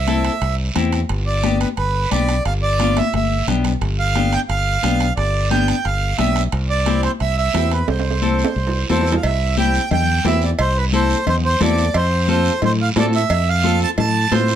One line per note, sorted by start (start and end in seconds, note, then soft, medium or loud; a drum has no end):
0.00 0.28 C2 loud
0.00 0.55 E5 medium
0.07 0.32 C4 medium
0.07 0.32 E4 medium
0.07 0.32 A4 medium
0.07 high conga medium
0.07 high timbale medium
0.07 short guiro medium
0.24 high timbale medium
0.24 short guiro medium
0.42 0.69 C2 medium
0.42 high conga soft
0.42 high timbale medium
0.42 long guiro medium
0.75 1.03 E2 medium
0.75 0.99 C4 medium
0.75 1.00 E4 medium
0.75 1.00 G4 medium
0.75 high conga medium
0.75 high timbale medium
0.75 short guiro medium
0.93 high timbale medium
0.93 short guiro medium
1.09 1.64 G1 loud
1.09 high conga soft
1.09 high timbale medium
1.09 long guiro medium
1.27 1.58 D5 medium
1.44 1.68 B3 medium
1.44 1.68 D4 medium
1.44 1.68 G4 medium
1.44 high conga medium
1.44 high timbale medium
1.44 short guiro medium
1.60 1.69 B4 medium
1.60 high timbale medium
1.60 short guiro medium
1.77 2.05 G1 medium
1.77 2.09 B4 medium
1.77 high conga soft
1.77 high timbale medium
1.77 long guiro medium
2.11 2.39 B1 medium
2.11 2.35 B3 medium
2.11 2.35 D4 soft
2.11 2.36 G4 medium
2.11 2.43 D5 medium
2.11 high conga medium
2.11 high timbale medium
2.11 short guiro medium
2.29 high timbale medium
2.29 short guiro medium
2.45 3.00 G1 loud
2.45 2.53 F5 medium
2.45 high conga soft
2.45 high timbale medium
2.45 long guiro medium
2.63 2.98 D5 loud
2.79 3.03 B3 medium
2.79 3.03 D4 soft
2.79 3.04 F4 medium
2.79 high conga medium
2.79 high timbale medium
2.79 short guiro medium
2.96 3.14 E5 medium
2.96 high conga medium
2.96 high timbale medium
2.96 short guiro medium
3.13 3.41 G1 medium
3.13 3.46 E5 medium
3.13 high conga medium
3.13 high timbale medium
3.13 long guiro medium
3.47 3.75 B1 medium
3.47 3.71 B3 medium
3.47 3.71 D4 medium
3.47 3.72 G4 medium
3.47 low conga medium
3.47 high timbale medium
3.47 short guiro medium
3.64 low conga medium
3.64 high timbale medium
3.64 short guiro medium
3.81 4.36 G1 loud
3.81 high conga soft
3.81 high timbale medium
3.81 long guiro medium
3.99 4.34 F5 loud
4.15 4.39 B3 medium
4.15 4.39 D4 soft
4.15 4.40 G4 medium
4.15 high conga medium
4.15 high timbale medium
4.15 short guiro medium
4.32 4.41 G5 loud
4.32 high timbale medium
4.32 short guiro medium
4.49 4.76 G1 medium
4.49 5.13 F5 loud
4.49 high conga soft
4.49 high timbale medium
4.49 long guiro medium
4.83 5.11 B1 loud
4.83 5.07 B3 medium
4.83 5.07 D4 medium
4.83 5.07 G4 medium
4.83 high conga medium
4.83 high timbale medium
4.83 short guiro medium
5.00 high timbale medium
5.00 short guiro medium
5.17 5.72 G1 loud
5.17 5.49 D5 medium
5.17 high conga soft
5.17 high timbale medium
5.17 long guiro medium
5.51 5.75 B3 medium
5.51 5.75 D4 medium
5.51 5.75 G4 medium
5.51 5.86 G5 medium
5.51 high conga medium
5.51 high timbale medium
5.51 short guiro medium
5.68 high timbale medium
5.68 short guiro medium
5.85 6.12 G1 medium
5.85 6.17 F5 medium
5.85 high conga soft
5.85 high timbale medium
5.85 long guiro medium
6.18 6.46 B1 medium
6.18 6.42 B3 medium
6.18 6.43 D4 medium
6.18 6.43 G4 medium
6.18 6.42 E5 medium
6.18 high conga medium
6.18 high timbale medium
6.18 short guiro medium
6.36 high timbale medium
6.36 short guiro medium
6.52 7.07 C2 loud
6.52 high conga soft
6.52 high timbale medium
6.52 long guiro medium
6.70 7.01 D5 medium
6.86 7.10 C4 medium
6.86 7.10 E4 medium
6.86 7.11 G4 medium
6.86 high conga medium
6.86 high timbale medium
6.86 short guiro medium
7.03 7.11 C5 medium
7.03 high timbale medium
7.03 short guiro medium
7.20 7.48 C2 medium
7.20 7.36 E5 medium
7.20 high conga soft
7.20 high timbale medium
7.20 long guiro medium
7.38 7.72 E5 loud
7.54 7.82 E2 medium
7.54 7.78 C4 medium
7.54 7.78 E4 medium
7.54 7.78 G4 medium
7.54 high conga medium
7.54 high timbale medium
7.54 low timbale medium
7.54 short guiro medium
7.71 7.88 B4 medium
7.71 high timbale medium
7.71 short guiro medium
7.88 8.43 C2 loud
7.88 8.86 C5 medium
7.88 high conga soft
7.88 high timbale medium
7.88 long guiro medium
8.00 high timbale medium
8.11 high timbale medium
8.22 8.46 C4 medium
8.22 8.46 E4 medium
8.22 8.46 A4 medium
8.22 high conga medium
8.22 short guiro medium
8.39 short guiro medium
8.45 high timbale loud
8.56 8.83 C2 medium
8.56 high conga soft
8.56 long guiro medium
8.67 low timbale medium
8.90 9.17 E2 medium
8.90 9.14 C4 medium
8.90 9.14 E4 medium
8.90 9.14 A4 medium
8.90 9.15 C5 medium
8.90 high conga medium
8.90 low timbale medium
8.90 short guiro medium
9.01 low timbale medium
9.06 short guiro medium
9.12 low timbale medium
9.17 9.24 F5 medium
9.23 9.78 C2 loud
9.23 9.56 E5 medium
9.23 cowbell loud
9.23 high conga soft
9.23 long guiro medium
9.57 9.81 C4 medium
9.57 9.81 E4 medium
9.57 9.81 G4 medium
9.57 9.90 G5 medium
9.57 high conga medium
9.57 short guiro medium
9.74 short guiro medium
9.91 10.18 E2 medium
9.91 10.27 G5 medium
9.91 cowbell medium
9.91 high conga soft
9.91 low conga medium
9.91 long guiro medium
10.25 10.52 E2 loud
10.25 10.49 C4 medium
10.25 10.49 E4 medium
10.25 10.49 G4 medium
10.25 10.43 E5 medium
10.25 high conga medium
10.25 low timbale medium
10.25 short guiro medium
10.42 10.51 D5 medium
10.42 short guiro medium
10.59 11.13 C2 loud
10.59 10.77 C5 medium
10.59 cowbell loud
10.59 high conga soft
10.59 long guiro medium
10.77 10.85 B4 medium
10.93 11.17 C4 medium
10.93 11.17 E4 medium
10.93 11.17 A4 medium
10.93 11.25 C5 medium
10.93 high conga medium
10.93 short guiro medium
11.10 short guiro medium
11.27 11.54 E2 loud
11.27 11.36 C5 medium
11.27 cowbell medium
11.27 high conga soft
11.27 low conga medium
11.27 long guiro medium
11.45 11.60 C5 medium
11.60 11.88 E2 loud
11.60 11.84 C4 medium
11.60 11.85 E4 medium
11.60 11.85 A4 medium
11.60 11.97 D5 medium
11.60 high conga medium
11.60 low timbale medium
11.60 short guiro medium
11.78 short guiro medium
11.94 12.49 F2 loud
11.94 12.29 C5 medium
11.94 cowbell loud
11.94 high conga soft
11.94 long guiro medium
12.28 12.52 C4 medium
12.28 12.52 F4 medium
12.28 12.53 A4 medium
12.28 12.61 C5 medium
12.28 high conga medium
12.28 short guiro medium
12.45 short guiro medium
12.62 12.89 A2 loud
12.62 12.72 C5 medium
12.62 cowbell medium
12.62 high conga soft
12.62 low conga loud
12.62 long guiro medium
12.82 12.89 F5 loud
12.96 13.23 A2 loud
12.96 13.20 C4 medium
12.96 13.20 F4 medium
12.96 13.20 A4 medium
12.96 13.06 D5 medium
12.96 high conga medium
12.96 low timbale medium
12.96 short guiro medium
13.13 13.49 E5 medium
13.13 short guiro medium
13.30 13.84 F2 loud
13.30 cowbell loud
13.30 high conga soft
13.30 long guiro medium
13.49 13.80 F5 loud
13.64 13.87 C4 medium
13.64 13.88 F4 medium
13.64 13.88 A4 medium
13.64 high conga medium
13.64 short guiro medium
13.80 13.90 A5 loud
13.80 short guiro medium
13.98 14.25 A2 loud
13.98 14.33 A5 loud
13.98 cowbell medium
13.98 high conga soft
13.98 low conga loud
13.98 long guiro medium
14.31 14.55 A2 loud
14.31 14.55 C4 medium
14.31 14.55 F4 medium
14.31 14.55 C5 medium
14.31 high conga medium
14.31 low timbale medium
14.31 short guiro medium
14.48 short guiro medium